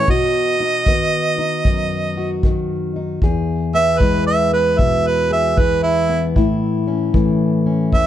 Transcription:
0.08 0.87 B2 medium
0.08 2.16 F#4 medium
0.08 2.41 D#5 loud
0.08 kick medium
0.60 1.37 D#4 medium
0.86 2.43 D#3 medium
0.86 3.20 B3 medium
0.86 kick medium
1.39 2.95 D#4 medium
1.65 3.19 F#2 medium
1.65 kick medium
2.17 3.19 F#4 medium
2.43 3.19 D#3 medium
2.43 kick medium
2.96 3.20 D#4 medium
3.22 6.36 E2 medium
3.22 5.29 G#4 medium
3.22 kick medium
3.74 4.51 B3 medium
3.74 4.01 E5 loud
3.99 5.57 E3 medium
3.99 6.32 G#3 medium
3.99 4.25 B4 loud
3.99 kick medium
4.27 4.52 E5 medium
4.53 6.08 B3 medium
4.53 4.80 B4 medium
4.78 5.57 B2 medium
4.78 5.09 E5 medium
4.78 kick medium
5.07 5.32 B4 medium
5.31 6.33 G#4 medium
5.31 5.61 E5 medium
5.57 7.13 E3 medium
5.57 5.82 B4 medium
5.57 kick medium
5.83 6.25 E4 medium
6.09 6.36 B3 medium
6.35 7.92 A2 medium
6.35 8.07 E4 medium
6.35 kick medium
6.87 7.65 C#4 medium
7.14 8.07 E3 medium
7.14 8.07 A3 medium
7.14 kick medium
7.66 8.07 C#4 medium
7.92 8.07 E2 medium
7.92 8.07 E5 loud
7.92 kick medium

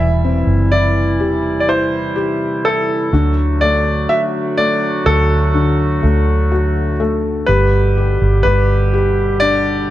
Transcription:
0.00 0.43 E1 loud
0.00 3.09 C3 medium
0.00 3.09 E3 medium
0.00 3.09 G3 medium
0.00 3.09 E4 medium
0.00 0.74 E5 medium
0.24 2.13 C4 soft
0.47 1.19 F#1 medium
0.72 1.67 E4 soft
0.72 1.59 D5 medium
1.19 3.09 E1 medium
1.19 2.14 G4 soft
1.60 1.67 D5 medium
1.68 2.64 E4 soft
1.68 2.68 C5 medium
2.16 3.10 G4 medium
2.65 3.12 E4 soft
2.65 3.33 A4 medium
3.12 4.05 D2 medium
3.12 7.30 D3 medium
3.12 5.53 D3 medium
3.12 7.30 F#3 medium
3.12 7.30 A3 medium
3.12 7.30 F#4 medium
3.61 4.56 A3 medium
3.61 4.11 D5 medium
4.09 5.05 F#4 soft
4.09 4.20 E5 medium
4.58 6.01 A3 soft
4.58 5.07 D5 medium
5.06 5.99 D2 medium
5.06 6.50 F#4 soft
5.06 6.96 A4 medium
5.54 7.44 D3 medium
6.03 7.44 D2 medium
6.03 6.98 A3 medium
6.52 7.45 F#4 soft
7.00 7.47 A3 medium
7.46 8.17 G1 medium
7.46 9.90 B2 medium
7.46 9.90 D3 medium
7.46 9.90 G3 medium
7.46 8.43 G3 medium
7.46 9.90 G4 medium
7.46 8.42 B4 medium
7.97 8.92 G4 medium
8.22 8.44 G1 medium
8.43 9.90 G1 medium
8.43 9.90 G3 medium
8.43 9.44 B4 medium
8.93 9.89 G4 medium
9.40 9.90 D4 soft
9.40 9.90 D5 medium

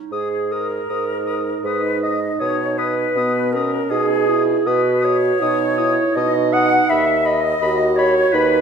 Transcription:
0.00 0.12 D#4 soft
0.11 0.81 G#2 medium
0.11 0.53 G#4 medium
0.11 0.54 G#4 medium
0.11 0.28 D#6 medium
0.52 1.66 A#4 medium
0.52 0.68 D#6 soft
0.89 1.56 G#2 medium
0.89 3.19 D#4 medium
0.89 1.05 D#6 medium
1.27 1.43 D#6 soft
1.64 2.31 G#2 medium
1.64 2.02 B4 medium
1.64 1.82 D#6 medium
2.03 2.42 D#5 medium
2.03 2.41 D#5 medium
2.03 2.20 D#6 soft
2.40 3.08 B2 medium
2.40 2.79 C#5 medium
2.40 2.80 C#5 medium
2.40 2.56 D#6 medium
2.78 3.53 B4 medium
2.78 3.54 B4 medium
2.78 2.95 D#6 medium
3.16 3.82 B2 medium
3.16 3.56 B3 medium
3.16 3.33 D#6 medium
3.51 3.93 C#4 medium
3.51 3.90 A#4 medium
3.51 3.92 A#4 medium
3.51 3.71 D#6 medium
3.90 4.57 B2 medium
3.90 4.28 D#4 medium
3.90 4.43 G#4 medium
3.90 4.68 G#4 loud
3.90 4.07 D#6 medium
4.29 4.68 E4 medium
4.29 4.45 D#6 medium
4.66 5.33 B2 medium
4.66 5.43 F#4 medium
4.66 5.03 B4 medium
4.66 5.07 B4 medium
4.66 4.83 D#6 medium
5.02 6.18 C#5 loud
5.02 6.16 C#5 medium
5.02 5.18 D#6 medium
5.41 5.99 B2 medium
5.41 5.80 D#4 medium
5.41 5.58 D#6 medium
5.78 6.19 E4 medium
5.78 5.94 D#6 medium
6.15 6.82 B2 medium
6.15 7.37 D#4 medium
6.15 6.51 D#5 medium
6.15 6.55 D#5 loud
6.15 6.33 D#6 medium
6.52 6.91 F#5 medium
6.52 6.91 F#5 loud
6.52 6.69 D#6 medium
6.89 7.54 D#2 medium
6.89 7.27 E5 medium
6.89 7.28 E5 loud
6.89 7.05 B5 medium
7.25 7.98 D#5 medium
7.25 8.00 D#5 loud
7.25 7.41 B5 medium
7.62 8.25 D#2 medium
7.62 8.35 F#4 medium
7.62 7.78 B5 medium
7.96 8.34 C#5 medium
7.96 8.36 C#5 loud
7.96 8.14 B5 medium
8.32 8.61 D#2 medium
8.32 8.61 D#4 loud
8.32 8.61 B4 medium
8.32 8.61 B4 loud
8.32 8.49 B5 medium

